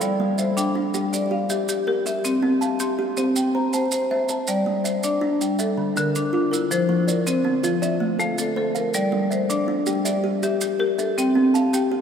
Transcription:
0.00 0.38 G3 medium
0.00 0.38 A4 medium
0.00 0.57 D5 medium
0.00 0.20 F5 medium
0.00 maracas medium
0.20 0.57 G3 medium
0.38 0.94 C5 medium
0.38 0.94 E5 medium
0.38 maracas medium
0.57 0.94 D4 medium
0.57 1.13 G5 medium
0.57 maracas medium
0.75 1.12 D4 medium
0.94 1.31 G3 medium
0.94 1.30 G4 medium
0.94 maracas medium
1.13 1.68 D5 medium
1.13 maracas medium
1.31 1.68 G4 medium
1.31 1.87 F5 medium
1.50 1.68 G4 medium
1.50 2.05 E5 medium
1.50 maracas medium
1.69 1.86 G4 medium
1.69 maracas medium
1.87 2.24 G4 medium
1.87 2.24 A#4 medium
2.06 2.61 G4 medium
2.06 2.43 E5 medium
2.06 maracas medium
2.25 2.61 C4 medium
2.25 maracas medium
2.42 2.80 C4 medium
2.61 3.17 F5 medium
2.61 3.17 A5 medium
2.61 maracas medium
2.80 3.17 G4 medium
2.80 3.36 C6 medium
2.80 maracas medium
2.99 3.36 G4 medium
3.17 3.54 C4 medium
3.17 3.54 C5 medium
3.17 maracas medium
3.36 3.92 G5 medium
3.36 maracas medium
3.55 3.92 C5 medium
3.55 4.10 A#5 medium
3.73 3.91 C5 medium
3.73 4.29 A5 medium
3.73 maracas medium
3.92 4.10 C5 medium
3.92 maracas medium
4.11 4.48 C5 medium
4.11 4.48 E5 medium
4.29 4.85 C5 medium
4.29 4.66 A5 medium
4.29 maracas medium
4.47 4.85 G3 medium
4.47 5.03 D5 medium
4.47 maracas medium
4.66 5.03 G3 medium
4.84 5.41 C5 medium
4.84 5.40 E5 medium
4.84 maracas medium
5.03 5.41 D4 medium
5.03 5.59 D5 medium
5.03 maracas medium
5.21 5.59 D4 medium
5.41 5.59 G3 medium
5.41 maracas medium
5.59 6.15 A4 medium
5.59 5.96 E5 medium
5.59 maracas medium
5.77 6.15 D3 medium
5.96 6.34 D3 medium
5.96 6.52 D4 medium
5.96 6.52 A#4 medium
5.96 maracas medium
6.15 6.33 D4 medium
6.15 maracas medium
6.33 6.71 D4 medium
6.33 6.70 F4 medium
6.51 6.90 E4 medium
6.51 7.08 A#4 medium
6.51 maracas medium
6.71 7.08 F3 medium
6.71 7.26 C5 medium
6.71 maracas medium
6.89 7.26 F3 medium
7.08 7.64 A#4 medium
7.08 7.63 D5 medium
7.08 maracas medium
7.27 7.64 C4 medium
7.27 7.82 C5 medium
7.27 maracas medium
7.45 7.82 C4 medium
7.63 7.82 F3 medium
7.63 8.19 F4 medium
7.63 maracas medium
7.82 8.19 D5 medium
7.82 8.38 E5 medium
7.82 maracas medium
8.00 8.38 A3 medium
8.19 8.57 A3 medium
8.19 8.75 A4 medium
8.19 8.75 F5 medium
8.19 maracas medium
8.38 8.56 A4 medium
8.38 maracas medium
8.56 8.94 A4 medium
8.56 8.94 C5 medium
8.75 9.13 A#4 medium
8.75 9.31 F5 medium
8.75 maracas medium
8.94 9.31 G3 medium
8.94 9.49 D5 medium
8.94 maracas medium
9.12 9.50 G3 medium
9.31 9.87 C5 medium
9.31 9.87 E5 medium
9.31 maracas medium
9.50 9.87 D4 medium
9.50 10.04 D5 medium
9.50 maracas medium
9.68 10.05 D4 medium
9.86 10.24 G3 medium
9.86 10.23 G4 medium
9.86 maracas medium
10.05 10.61 D5 medium
10.05 10.61 E5 medium
10.05 maracas medium
10.24 10.41 G4 medium
10.42 10.99 G4 medium
10.42 10.61 G4 medium
10.42 10.99 E5 medium
10.42 maracas medium
10.61 10.79 G4 medium
10.61 maracas medium
10.79 11.17 G4 medium
10.79 11.17 A#4 medium
10.98 11.36 A4 medium
10.98 11.54 E5 medium
10.98 maracas medium
11.18 11.55 C4 medium
11.18 11.72 G5 medium
11.18 maracas medium
11.35 11.73 C4 medium
11.54 12.01 F5 medium
11.54 12.01 A5 medium
11.54 maracas medium
11.73 12.01 G4 medium
11.73 12.01 G5 medium
11.73 maracas medium
11.92 12.01 G4 medium

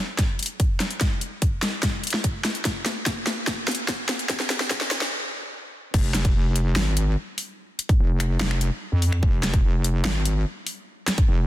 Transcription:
0.19 kick medium
0.19 snare soft
0.19 closed hi-hat medium
0.39 closed hi-hat soft
0.43 closed hi-hat medium
0.46 closed hi-hat medium
0.60 kick medium
0.60 closed hi-hat medium
0.80 snare medium
0.80 closed hi-hat medium
0.91 closed hi-hat soft
1.01 kick medium
1.01 snare medium
1.01 closed hi-hat medium
1.21 closed hi-hat medium
1.42 kick medium
1.42 closed hi-hat medium
1.62 snare medium
1.62 closed hi-hat medium
1.83 kick loud
1.83 snare medium
1.83 closed hi-hat medium
2.04 closed hi-hat medium
2.07 closed hi-hat medium
2.10 snare medium
2.10 closed hi-hat medium
2.24 kick loud
2.24 closed hi-hat medium
2.45 snare medium
2.45 closed hi-hat medium
2.55 closed hi-hat soft
2.65 kick medium
2.65 snare medium
2.65 closed hi-hat medium
2.86 snare medium
2.86 closed hi-hat medium
3.06 kick loud
3.06 snare medium
3.06 closed hi-hat medium
3.27 snare medium
3.27 closed hi-hat medium
3.47 kick medium
3.47 snare medium
3.47 closed hi-hat medium
3.68 snare medium
3.68 closed hi-hat medium
3.71 closed hi-hat medium
3.75 closed hi-hat medium
3.88 kick loud
3.88 snare medium
3.88 closed hi-hat medium
4.09 snare medium
4.09 closed hi-hat medium
4.19 closed hi-hat soft
4.29 kick medium
4.29 snare medium
4.29 closed hi-hat medium
4.40 snare medium
4.50 snare medium
4.50 closed hi-hat medium
4.60 snare medium
4.71 kick loud
4.71 snare loud
4.71 closed hi-hat medium
4.81 snare medium
4.91 snare loud
4.91 closed hi-hat medium
5.01 snare medium
5.94 6.33 F1 loud
5.94 kick loud
5.94 crash loud
6.14 snare medium
6.14 closed hi-hat medium
6.25 kick loud
6.25 closed hi-hat soft
6.35 6.74 F1 loud
6.56 closed hi-hat medium
6.76 7.16 G#1 medium
6.76 snare loud
6.97 closed hi-hat medium
7.38 open hi-hat loud
7.79 closed hi-hat medium
7.89 kick loud
7.89 closed hi-hat soft
7.99 8.39 F1 loud
8.20 finger snap medium
8.20 closed hi-hat medium
8.41 8.70 F1 loud
8.41 snare loud
8.51 finger snap medium
8.61 closed hi-hat medium
8.92 9.21 F2 loud
9.02 open hi-hat medium
9.12 finger snap medium
9.23 9.62 F1 loud
9.23 kick loud
9.43 snare medium
9.43 closed hi-hat medium
9.54 kick loud
9.54 closed hi-hat soft
9.64 10.03 F1 loud
9.84 closed hi-hat medium
10.05 10.44 G#1 loud
10.05 snare loud
10.25 closed hi-hat medium
10.67 open hi-hat medium
11.08 snare medium
11.08 closed hi-hat medium
11.18 kick loud
11.18 closed hi-hat soft
11.28 11.47 F1 loud

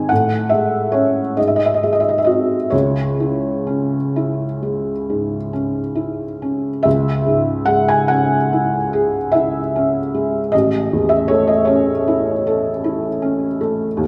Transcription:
0.00 0.13 G#2 medium
0.00 0.12 D#3 soft
0.00 0.13 C4 soft
0.00 0.13 D#4 soft
0.00 0.12 G#5 medium
0.09 1.34 A2 soft
0.09 0.50 F#5 medium
0.49 1.20 G#3 soft
0.49 0.92 E5 medium
0.92 1.34 C#4 soft
0.92 1.37 C#5 medium
1.37 2.68 G#2 soft
1.37 1.46 D#5 soft
1.47 1.56 E5 medium
1.56 1.65 D#5 medium
1.65 1.74 E5 medium
1.74 1.83 D#5 medium
1.83 2.55 G#3 soft
1.83 1.92 E5 soft
1.93 2.01 D#5 medium
2.00 2.09 E5 soft
2.09 2.18 D#5 soft
2.18 2.27 E5 soft
2.24 2.68 C4 soft
2.24 2.68 F#4 soft
2.24 2.71 D#5 medium
2.70 6.81 C#2 soft
2.70 5.51 C#5 medium
3.20 3.96 E4 soft
3.67 4.44 C#4 soft
4.16 4.91 E4 soft
4.63 5.35 G#3 soft
5.10 5.79 G#2 soft
5.53 6.24 C#4 soft
5.95 6.68 E4 soft
6.42 6.86 C#4 soft
6.83 10.49 C#2 medium
6.83 7.68 E5 medium
7.27 7.94 G#2 soft
7.66 8.35 G#3 soft
7.66 7.88 F#5 medium
7.88 8.10 G#5 medium
8.08 8.76 C#4 soft
8.08 9.32 F#5 medium
8.53 9.18 E4 soft
8.93 9.59 G#4 soft
9.32 9.99 E4 soft
9.32 10.52 E5 medium
9.76 10.38 C#4 soft
10.14 10.53 G#3 soft
10.52 13.99 A1 soft
10.52 11.11 D#5 medium
10.93 11.54 E2 soft
11.09 11.29 E5 medium
11.28 11.92 A3 soft
11.28 11.48 C#5 medium
11.47 11.68 D#5 medium
11.65 12.30 C#4 soft
11.65 13.60 C#5 medium
12.08 12.70 E4 soft
12.47 13.08 A4 soft
12.84 13.46 E4 soft
13.22 13.85 C#4 soft
13.61 14.01 A3 soft
13.97 14.07 D#2 medium

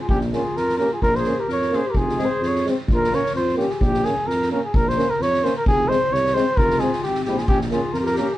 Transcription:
0.00 0.09 F4 medium
0.00 0.08 G#4 medium
0.09 0.35 A#1 loud
0.09 0.20 C#4 medium
0.09 0.19 G4 medium
0.09 kick medium
0.21 snare soft
0.33 0.42 A#3 medium
0.33 0.43 C#4 medium
0.33 0.58 F4 medium
0.33 0.58 G#4 medium
0.33 snare soft
0.56 0.81 F2 medium
0.56 0.80 F4 medium
0.56 0.77 A#4 medium
0.56 snare soft
0.69 snare soft
0.78 0.88 A#3 medium
0.78 0.87 C#4 medium
0.78 0.91 G4 medium
0.78 0.90 A#4 medium
0.78 snare soft
0.92 1.01 F4 medium
0.92 1.02 G#4 medium
1.02 1.28 A#1 loud
1.02 1.19 F4 medium
1.02 1.17 A#4 loud
1.02 kick medium
1.15 1.40 G#4 medium
1.15 1.42 C5 medium
1.15 snare soft
1.24 1.34 A#3 medium
1.24 1.35 C#4 medium
1.24 snare soft
1.39 1.48 G4 medium
1.39 1.49 A#4 medium
1.48 1.74 F2 medium
1.48 1.76 A#4 medium
1.48 1.77 C#5 medium
1.48 snare soft
1.62 snare soft
1.70 1.80 A#3 medium
1.70 1.82 C#4 medium
1.70 snare soft
1.75 1.88 G#4 medium
1.75 1.92 C5 medium
1.87 1.99 G4 medium
1.87 1.98 A#4 medium
1.95 2.20 F1 loud
1.95 2.21 F4 medium
1.95 2.27 G#4 loud
1.95 kick medium
2.09 snare soft
2.18 2.27 G#3 medium
2.18 2.29 C4 medium
2.18 2.43 G#4 medium
2.18 snare soft
2.25 2.49 C5 medium
2.41 2.66 F2 medium
2.41 2.65 G#4 medium
2.41 snare soft
2.47 2.67 C#5 medium
2.55 snare soft
2.64 2.73 G#3 medium
2.64 2.75 C4 medium
2.64 snare soft
2.87 3.12 A#1 medium
2.87 kick loud
2.91 3.16 F4 medium
2.91 3.16 A#4 loud
3.04 snare soft
3.10 3.19 A#3 medium
3.10 3.21 C#4 medium
3.10 snare soft
3.14 3.36 A#4 medium
3.14 3.35 C#5 medium
3.26 snare soft
3.34 3.59 F2 medium
3.34 3.62 F4 medium
3.34 3.56 C5 loud
3.34 snare soft
3.49 snare soft
3.55 3.65 A#3 medium
3.55 3.67 C#4 medium
3.55 3.73 G4 medium
3.55 snare soft
3.61 3.82 G4 medium
3.70 3.83 G#4 medium
3.70 snare soft
3.81 4.06 A#1 loud
3.81 4.06 G4 loud
3.81 kick medium
3.94 snare soft
4.03 4.12 A#3 medium
4.03 4.15 C#4 medium
4.03 4.29 G#4 medium
4.03 snare soft
4.27 4.52 F2 medium
4.27 4.50 A#4 loud
4.27 snare soft
4.42 snare soft
4.51 4.60 A#3 medium
4.51 4.60 C#4 medium
4.51 4.62 A#4 medium
4.64 4.77 G#4 medium
4.74 4.99 A#1 medium
4.74 4.90 A#4 loud
4.74 kick loud
4.88 5.12 C5 loud
4.88 snare soft
4.97 5.06 A#3 medium
4.97 5.05 C#4 medium
4.97 snare soft
5.10 5.24 A#4 medium
5.19 5.45 F2 medium
5.19 5.45 C#5 loud
5.19 snare soft
5.34 snare soft
5.42 5.52 A#3 medium
5.42 5.51 C#4 medium
5.42 5.55 C5 medium
5.42 snare soft
5.57 5.65 A#4 medium
5.65 5.90 F1 loud
5.65 5.90 G#4 loud
5.65 kick loud
5.88 5.97 G#3 medium
5.88 5.97 C4 medium
5.88 6.14 C5 loud
5.88 snare soft
6.11 6.37 C2 medium
6.11 6.36 C#5 loud
6.11 snare soft
6.26 snare soft
6.34 6.43 G#3 medium
6.34 6.45 C4 medium
6.34 6.58 C5 loud
6.34 snare soft
6.57 6.82 F1 loud
6.57 6.82 F4 medium
6.57 6.81 A#4 loud
6.57 kick loud
6.70 snare soft
6.78 6.88 G#3 medium
6.78 6.90 C4 medium
6.78 7.02 G#4 medium
6.78 snare soft
6.82 7.04 F4 medium
6.93 snare soft
7.03 7.24 G#1 medium
7.03 7.26 C4 medium
7.03 7.24 G4 medium
7.03 snare soft
7.15 snare soft
7.25 7.47 A#1 medium
7.25 7.36 G#3 soft
7.25 7.36 C4 soft
7.25 7.40 G4 medium
7.25 snare soft
7.29 7.42 E4 medium
7.38 7.50 F4 medium
7.38 7.48 G#4 medium
7.38 snare soft
7.48 7.74 A#1 loud
7.48 7.60 C#4 medium
7.48 7.59 G4 loud
7.48 kick loud
7.61 snare soft
7.71 7.80 A#3 medium
7.71 7.81 C#4 medium
7.71 7.99 F4 medium
7.71 7.94 G#4 medium
7.71 snare soft
7.93 8.19 F2 loud
7.93 7.98 A#4 loud
7.93 snare soft
7.99 8.01 F4 medium
7.99 8.08 G4 medium
7.99 8.05 A#4 medium
8.06 8.16 A#4 medium
8.06 snare soft
8.13 8.26 A#3 medium
8.13 8.20 G4 medium
8.13 8.30 A#4 medium
8.13 snare soft
8.18 8.27 C#4 medium
8.18 8.35 G4 medium
8.30 8.38 G#4 medium
8.30 8.32 A#4 medium
8.35 8.37 G4 medium

